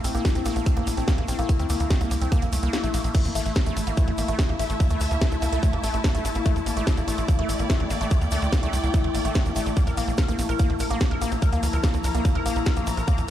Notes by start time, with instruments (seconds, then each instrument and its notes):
Already playing: ambient pad A3 E4
0.04 analog synth bass A#1, synth arpeggio sound C4, open hi-hat, ride, shaker
0.15 analog synth bass A#1, synth arpeggio sound A#3, closed hi-hat, shaker
0.25 synth arpeggio sound A#3, kick, snare, closed hi-hat, shaker
0.35 analog synth bass A#1, synth arpeggio sound C4, closed hi-hat, shaker
0.45 analog synth bass A#1, synth arpeggio sound A#3, open hi-hat, ride, shaker
0.56 analog synth bass A#1, synth arpeggio sound A#3, closed hi-hat, shaker
0.66 synth arpeggio sound C4, kick, closed hi-hat, shaker
0.77 analog synth bass A#1, synth arpeggio sound A#3, closed hi-hat
0.87 analog synth bass A#1, synth arpeggio sound A#3, open hi-hat, ride, shaker
0.97 analog synth bass A#1, synth arpeggio sound C4, closed hi-hat, shaker
1.08 synth arpeggio sound A#3, kick, snare, closed hi-hat, shaker
1.18 analog synth bass A#1, synth arpeggio sound A#3, closed hi-hat
1.28 analog synth bass A#1, synth arpeggio sound C4, open hi-hat, ride, shaker
1.39 analog synth bass A#1, synth arpeggio sound A#3, closed hi-hat, shaker
1.49 synth arpeggio sound A#3, kick, closed hi-hat, shaker
1.59 analog synth bass D2, synth arpeggio sound C4, closed hi-hat, shaker
1.70 analog synth bass D2, synth arpeggio sound A#3, open hi-hat, ride, shaker
1.80 analog synth bass D2, synth arpeggio sound A#3, closed hi-hat, shaker
1.90 synth arpeggio sound C4, kick, snare, closed hi-hat, shaker
2.01 analog synth bass C2, synth arpeggio sound A#3, closed hi-hat, shaker
2.11 analog synth bass C2, synth arpeggio sound A#3, open hi-hat, ride, shaker
2.21 analog synth bass C2, synth arpeggio sound C4, closed hi-hat, shaker
2.32 synth arpeggio sound A#3, kick, closed hi-hat, shaker
2.42 analog synth bass A#1, synth arpeggio sound A#3, closed hi-hat, shaker
2.53 analog synth bass C2, synth arpeggio sound A3, open hi-hat, ride, shaker
2.63 analog synth bass C2, synth arpeggio sound A#3, closed hi-hat, shaker
2.73 synth arpeggio sound A#3, snare, closed hi-hat, shaker
2.84 analog synth bass A#1, synth arpeggio sound A3, closed hi-hat, shaker
2.94 analog synth bass A#1, synth arpeggio sound A#3, open hi-hat, ride, shaker
3.04 analog synth bass A#1, synth arpeggio sound A#3, closed hi-hat, shaker
3.15 string section A3, ambient pad A3 E4, synth arpeggio sound A3, kick, closed hi-hat, crash, shaker
3.25 analog synth bass A1, synth arpeggio sound A#3, closed hi-hat, shaker
3.35 analog synth bass A1, synth arpeggio sound A3, open hi-hat, ride, shaker
3.46 analog synth bass A1, synth arpeggio sound A3, closed hi-hat, shaker
3.55 synth arpeggio sound A#3, kick, snare, closed hi-hat, shaker
3.66 analog synth bass A1, synth arpeggio sound A3, closed hi-hat, shaker
3.74 analog synth bass A1, synth arpeggio sound A3, string section E4 E5, open hi-hat, ride, shaker
3.87 analog synth bass A1, synth arpeggio sound A#3, closed hi-hat, shaker
3.97 synth arpeggio sound A3, kick, closed hi-hat, shaker
4.08 analog synth bass A1, synth arpeggio sound A3, closed hi-hat
4.18 analog synth bass A1, synth arpeggio sound A#3, open hi-hat, ride, shaker
4.28 analog synth bass A1, synth arpeggio sound A3, closed hi-hat, shaker
4.39 synth arpeggio sound A3, kick, snare, closed hi-hat, shaker
4.49 analog synth bass A1, synth arpeggio sound A#3, closed hi-hat
4.55 string section A5
4.59 analog synth bass A1, synth arpeggio sound A3, open hi-hat, ride, shaker
4.70 analog synth bass A1, synth arpeggio sound A3, closed hi-hat, shaker
4.80 synth arpeggio sound A#3, kick, closed hi-hat, shaker
4.90 analog synth bass D2, synth arpeggio sound A3, closed hi-hat, shaker
5.01 analog synth bass D2, synth arpeggio sound A3, open hi-hat, ride, shaker
5.11 analog synth bass D2, synth arpeggio sound A#3, closed hi-hat, shaker
5.21 synth arpeggio sound A3, kick, snare, closed hi-hat, shaker
5.31 analog synth bass C2, synth arpeggio sound A3, closed hi-hat, shaker
5.42 analog synth bass C2, synth arpeggio sound A#3, open hi-hat, ride, shaker
5.52 analog synth bass C2, synth arpeggio sound A3, closed hi-hat, shaker
5.63 synth arpeggio sound A3, kick, closed hi-hat, shaker
5.73 analog synth bass A1, synth arpeggio sound A#3, closed hi-hat
5.84 analog synth bass A1, synth arpeggio sound A3, open hi-hat, ride, shaker
5.94 analog synth bass A1, synth arpeggio sound A3, closed hi-hat, shaker
6.04 synth arpeggio sound A#3, kick, snare, closed hi-hat, shaker
6.15 analog synth bass A1, synth arpeggio sound A3, closed hi-hat, shaker
6.25 analog synth bass A1, synth arpeggio sound A3, open hi-hat, ride, shaker
6.34 analog synth bass A1, synth arpeggio sound A#3, closed hi-hat, shaker
6.45 synth arpeggio sound A3, kick, closed hi-hat, shaker
6.56 analog synth bass A1, synth arpeggio sound A3, closed hi-hat, shaker
6.66 analog synth bass A1, synth arpeggio sound A#3, string section D5, open hi-hat, ride, shaker
6.77 analog synth bass A1, synth arpeggio sound A3, closed hi-hat, shaker
6.87 synth arpeggio sound A3, kick, snare, closed hi-hat, shaker
6.97 analog synth bass A1, synth arpeggio sound A#3, closed hi-hat, shaker
7.08 analog synth bass A1, synth arpeggio sound A3, open hi-hat, ride, shaker
7.18 analog synth bass A1, synth arpeggio sound A3, closed hi-hat, shaker
7.28 synth arpeggio sound A#3, kick, closed hi-hat, shaker
7.39 analog synth bass A1, synth arpeggio sound A3, closed hi-hat
7.49 analog synth bass A1, synth arpeggio sound A3, string section G5, open hi-hat, ride, shaker
7.59 analog synth bass A1, synth arpeggio sound A#3, closed hi-hat, shaker
7.70 synth arpeggio sound A3, kick, snare, closed hi-hat, shaker
7.80 analog synth bass A1, synth arpeggio sound A3, closed hi-hat
7.90 analog synth bass A1, synth arpeggio sound A#3, open hi-hat, ride, shaker
8.01 analog synth bass A1, synth arpeggio sound A3, closed hi-hat, shaker
8.11 synth arpeggio sound A3, kick, closed hi-hat, shaker
8.21 analog synth bass D2, synth arpeggio sound A#3, closed hi-hat, shaker
8.31 analog synth bass D2, synth arpeggio sound A3, open hi-hat, ride, shaker
8.42 analog synth bass D2, synth arpeggio sound A3, closed hi-hat, shaker
8.52 synth arpeggio sound A#3, kick, snare, closed hi-hat, shaker
8.63 analog synth bass C2, synth arpeggio sound A3, closed hi-hat, shaker
8.73 analog synth bass C2, synth arpeggio sound A3, open hi-hat, ride, shaker
8.83 analog synth bass C2, synth arpeggio sound A#3, closed hi-hat, shaker
8.94 synth arpeggio sound A3, kick, closed hi-hat, shaker
9.04 analog synth bass A1, synth arpeggio sound A3, closed hi-hat
9.15 analog synth bass A1, synth arpeggio sound A#3, open hi-hat, ride, shaker
9.25 analog synth bass A1, synth arpeggio sound A3, closed hi-hat, shaker
9.35 synth arpeggio sound A3, kick, snare, closed hi-hat, shaker
9.46 analog synth bass A1, synth arpeggio sound A#3, closed hi-hat, shaker
9.56 analog synth bass A1, synth arpeggio sound A3, open hi-hat, ride, shaker
9.66 analog synth bass A1, synth arpeggio sound A3, closed hi-hat, shaker
9.76 synth arpeggio sound A#3, kick, closed hi-hat, shaker
9.87 analog synth bass A#1, synth arpeggio sound A#4, closed hi-hat, shaker
9.97 analog synth bass A#1, synth arpeggio sound A#3, open hi-hat, ride, shaker
10.08 analog synth bass A#1, synth arpeggio sound A#3, closed hi-hat, shaker
10.18 synth arpeggio sound A#4, kick, snare, closed hi-hat, shaker
10.28 analog synth bass A#1, synth arpeggio sound A#3, closed hi-hat, shaker
10.33 string section F3
10.39 analog synth bass A#1, synth arpeggio sound A#3, open hi-hat, ride, shaker
10.49 analog synth bass A#1, synth arpeggio sound A#4, closed hi-hat, shaker
10.59 synth arpeggio sound A#3, kick, closed hi-hat, shaker
10.70 analog synth bass A#1, synth arpeggio sound A#3, closed hi-hat
10.80 analog synth bass A#1, synth arpeggio sound A#4, open hi-hat, ride, shaker
10.90 analog synth bass A#1, synth arpeggio sound A#3, closed hi-hat, shaker
10.95 string section A#5
11.01 synth arpeggio sound A#3, kick, snare, closed hi-hat, shaker
11.11 analog synth bass A#1, synth arpeggio sound A#4, closed hi-hat
11.21 analog synth bass A#1, synth arpeggio sound A#3, open hi-hat, ride, shaker
11.31 analog synth bass A#1, synth arpeggio sound A#3, closed hi-hat, shaker
11.42 synth arpeggio sound A#4, kick, closed hi-hat, shaker
11.53 analog synth bass D2, synth arpeggio sound A#3, closed hi-hat, shaker
11.63 analog synth bass D2, synth arpeggio sound A#3, open hi-hat, ride, shaker
11.73 analog synth bass D2, synth arpeggio sound A#4, closed hi-hat, shaker
11.84 synth arpeggio sound A#3, kick, snare, closed hi-hat, shaker
11.94 analog synth bass C2, synth arpeggio sound A#3, closed hi-hat, shaker
12.04 analog synth bass C2, synth arpeggio sound A#4, open hi-hat, ride, shaker
12.14 analog synth bass C2, synth arpeggio sound A#3, closed hi-hat, shaker
12.25 synth arpeggio sound A#3, kick, closed hi-hat, shaker
12.35 analog synth bass A#1, synth arpeggio sound A#4, closed hi-hat
12.46 analog synth bass A#1, synth arpeggio sound A#3, open hi-hat, ride, shaker
12.56 analog synth bass A#1, synth arpeggio sound A#3, closed hi-hat, shaker
12.66 synth arpeggio sound A#4, kick, snare, closed hi-hat, shaker
12.76 analog synth bass A#1, synth arpeggio sound A#3, closed hi-hat, shaker
12.87 analog synth bass A#1, synth arpeggio sound A#3, open hi-hat, ride, shaker
12.97 analog synth bass A#1, synth arpeggio sound A#4, closed hi-hat, shaker
13.08 synth arpeggio sound A#3, kick, closed hi-hat, shaker
13.18 analog synth bass A#1, synth arpeggio sound A#3, closed hi-hat, shaker